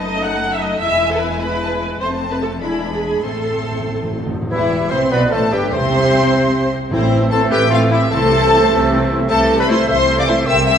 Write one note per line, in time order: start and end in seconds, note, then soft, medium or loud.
0.00 0.79 F#1 medium
0.00 0.78 F#2 medium
0.00 0.78 A3 medium
0.00 0.79 A3 medium
0.00 0.78 D#4 medium
0.00 0.79 D#4 medium
0.00 0.23 D#5 medium
0.00 0.84 A5 medium
0.23 0.53 F#5 loud
0.54 0.63 E5 medium
0.62 0.82 D#5 loud
0.81 1.98 E1 medium
0.81 1.98 E2 medium
0.81 2.00 G#3 medium
0.81 1.97 G#3 medium
0.81 1.98 E4 medium
0.81 1.97 E4 medium
0.81 1.11 E5 loud
0.81 1.41 G#5 medium
1.12 1.22 A4 medium
1.20 1.39 B4 medium
1.40 1.99 B4 loud
1.40 1.61 B5 medium
1.62 1.69 A5 medium
1.82 1.89 G#5 medium
2.00 2.60 F1 medium
2.00 2.60 F2 medium
2.00 2.58 A3 medium
2.00 2.58 C4 medium
2.00 2.08 C5 loud
2.00 2.60 A5 medium
2.32 2.36 B4 medium
2.42 2.50 A4 medium
2.61 3.24 E1 medium
2.61 3.24 E2 medium
2.61 3.23 G#3 medium
2.61 3.20 G#3 medium
2.61 3.24 D4 medium
2.61 3.20 D4 medium
2.61 2.92 E4 medium
2.61 3.23 B5 medium
2.93 3.02 G#4 medium
3.03 3.24 G#4 medium
3.23 4.28 A1 medium
3.23 4.28 A2 medium
3.23 3.31 A2 soft
3.23 4.28 A3 medium
3.23 4.28 C4 medium
3.23 4.27 C4 medium
3.23 4.29 A4 medium
3.23 4.19 C6 medium
3.32 3.39 A2 soft
3.40 3.46 A2 soft
3.47 3.55 A2 soft
3.56 3.62 A2 soft
3.64 3.70 A2 soft
3.71 3.78 A2 soft
3.80 3.86 A2 medium
3.87 3.94 A2 medium
3.95 4.01 A2 medium
4.03 4.10 A2 medium
4.11 4.18 A2 medium
4.19 4.25 A2 medium
4.27 4.33 A2 medium
4.34 4.41 A2 medium
4.42 4.49 A2 medium
4.50 4.89 E1 medium
4.50 4.88 E2 medium
4.50 4.89 E2 medium
4.50 4.94 E3 medium
4.50 4.89 E3 medium
4.50 4.89 E4 medium
4.50 4.92 E4 medium
4.50 4.88 G4 medium
4.50 4.89 E5 medium
4.90 5.12 C2 medium
4.90 5.10 C3 medium
4.90 5.12 C3 medium
4.90 5.12 C4 medium
4.90 5.11 C4 medium
4.90 4.98 C5 medium
4.90 5.13 C5 medium
4.90 5.00 C5 medium
4.90 5.11 E5 medium
4.90 5.12 C6 medium
5.11 5.32 B1 medium
5.11 5.32 B2 medium
5.11 5.32 B3 medium
5.11 5.31 B3 medium
5.11 5.31 B4 medium
5.11 5.34 B4 medium
5.11 5.31 B4 medium
5.11 5.32 D5 medium
5.11 5.20 B5 medium
5.30 5.52 A1 medium
5.30 5.52 A2 medium
5.30 5.52 A3 medium
5.30 5.53 A3 medium
5.30 5.52 A4 medium
5.30 5.55 A4 medium
5.30 5.53 C5 medium
5.30 5.53 A5 medium
5.52 5.61 G1 medium
5.52 5.73 G2 medium
5.52 5.61 G2 medium
5.52 5.73 G3 medium
5.52 5.62 G3 medium
5.52 5.74 G3 medium
5.52 5.73 G4 medium
5.52 5.74 G4 medium
5.52 5.73 B4 medium
5.52 5.74 G5 medium
5.72 6.70 C2 medium
5.72 6.29 E2 medium
5.72 6.70 C3 loud
5.72 6.71 C3 medium
5.72 6.70 C4 loud
5.72 6.73 C4 loud
5.72 6.73 C5 medium
5.72 6.71 C5 medium
5.72 6.70 E5 medium
5.72 6.71 C6 loud
6.91 7.44 A1 medium
6.91 7.46 A2 medium
6.91 7.43 A2 medium
6.91 8.07 E3 medium
6.91 8.07 A3 medium
6.91 8.08 A3 medium
6.91 7.00 C4 medium
6.91 8.07 C4 medium
6.91 7.28 C4 medium
6.91 7.00 E4 medium
6.91 7.28 E4 medium
6.91 8.07 A4 medium
6.91 7.29 C5 loud
6.91 8.08 E5 medium
7.01 7.11 A3 medium
7.01 7.09 C4 medium
7.10 7.20 C4 medium
7.10 7.20 E4 medium
7.21 7.31 A3 medium
7.21 7.29 C4 medium
7.30 7.40 C4 medium
7.30 7.40 E4 medium
7.30 7.50 A4 medium
7.30 7.53 A4 loud
7.30 7.50 C5 loud
7.30 7.39 A5 loud
7.41 7.51 A3 medium
7.41 7.50 C4 medium
7.49 8.04 A1 medium
7.49 8.04 A2 medium
7.49 7.59 C4 medium
7.49 7.60 E4 medium
7.49 7.59 G4 loud
7.49 7.70 G4 loud
7.49 7.69 B4 loud
7.49 7.71 G5 loud
7.60 7.70 A3 medium
7.60 7.68 C4 medium
7.69 7.78 C4 medium
7.69 7.80 E4 medium
7.69 7.79 F4 medium
7.69 7.91 F4 medium
7.69 7.90 A4 medium
7.74 7.81 F5 loud
7.79 7.91 A3 medium
7.79 7.87 C4 medium
7.89 7.99 C4 medium
7.89 8.00 E4 medium
7.89 7.99 E4 medium
7.89 8.00 E4 medium
7.89 8.11 G4 medium
7.93 8.12 E5 loud
8.00 8.11 A3 medium
8.00 8.10 C4 medium
8.10 8.64 C2 medium
8.10 8.64 C3 loud
8.10 9.27 E3 medium
8.10 9.26 A3 medium
8.10 9.27 A3 medium
8.10 8.20 C4 medium
8.10 9.27 C4 medium
8.10 8.21 E4 medium
8.10 9.08 A4 loud
8.10 9.27 A4 medium
8.10 9.09 A4 loud
8.10 9.08 C5 loud
8.10 9.27 E5 medium
8.10 9.10 A5 loud
8.21 8.31 A3 medium
8.21 8.29 C4 medium
8.31 8.40 C4 medium
8.31 8.41 E4 medium
8.42 8.51 A3 medium
8.42 8.49 C4 medium
8.51 8.59 C4 medium
8.51 8.60 E4 medium
8.60 8.70 A3 medium
8.60 8.69 C4 medium
8.70 9.23 C2 medium
8.70 9.22 C3 loud
8.70 8.79 C4 medium
8.70 8.80 E4 medium
8.80 8.90 A3 medium
8.80 8.89 C4 medium
8.91 9.00 C4 medium
8.91 9.00 E4 medium
9.01 9.10 A3 medium
9.01 9.09 C4 medium
9.10 9.19 C4 medium
9.10 9.20 E4 medium
9.20 9.30 A3 medium
9.20 9.30 C4 medium
9.28 9.79 C2 medium
9.28 9.78 C3 medium
9.28 9.86 E3 medium
9.28 9.86 A3 medium
9.28 9.87 A3 medium
9.28 9.87 C4 medium
9.28 9.86 A4 medium
9.28 9.57 A4 loud
9.28 9.35 C5 medium
9.28 9.87 E5 medium
9.28 9.57 A5 loud
9.58 9.64 B4 medium
9.58 9.63 B4 medium
9.58 9.68 D5 medium
9.58 9.70 B5 loud
9.68 9.77 A3 medium
9.68 9.78 E4 medium
9.68 9.87 C5 medium
9.68 9.88 C5 medium
9.68 9.88 E5 loud
9.68 9.89 C6 loud
9.87 10.37 C2 medium
9.87 10.37 C3 loud
9.87 10.45 E3 medium
9.87 10.45 A3 medium
9.87 10.48 A3 medium
9.87 10.45 C4 medium
9.87 10.45 A4 medium
9.87 10.20 C5 medium
9.87 10.17 C5 loud
9.87 10.48 E5 medium
9.87 9.96 E5 loud
9.87 10.18 C6 loud
10.18 10.27 D5 medium
10.18 10.23 D5 medium
10.18 10.23 F5 medium
10.18 10.28 D6 loud
10.27 10.37 A3 medium
10.27 10.37 E4 medium
10.27 10.46 C5 medium
10.27 10.36 C5 medium
10.27 10.46 E5 medium
10.27 10.47 C6 loud
10.46 10.78 C2 medium
10.46 10.78 C3 medium
10.46 10.78 G3 medium
10.46 10.78 A#3 medium
10.46 10.78 C4 medium
10.46 10.78 A#4 medium
10.46 10.78 C5 medium
10.46 10.56 E5 loud
10.46 10.65 E5 loud
10.46 10.65 G5 loud
10.46 10.66 E6 loud
10.66 10.78 E5 loud
10.66 10.78 E5 medium
10.66 10.72 G5 medium
10.66 10.78 E6 loud